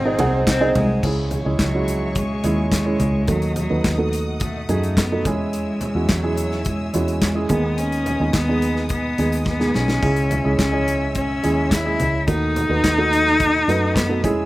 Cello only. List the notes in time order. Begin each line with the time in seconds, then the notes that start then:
Already playing: C4
0.49 C4
0.77 G#3
1.63 F#3
2.19 G#3
2.74 G#3
3.31 F#3
3.59 F#3
4.43 A3
4.71 A3
4.98 B3
5.26 G#3
6.11 F#3
6.67 G#3
7.23 G#3
7.50 B3
7.79 C#4
8.35 B3
8.90 B3
9.47 B3
9.75 C#4
10.59 C#4
11.16 C#4
11.72 E4
12.30 D#4
13.96 B3
14.25 G#3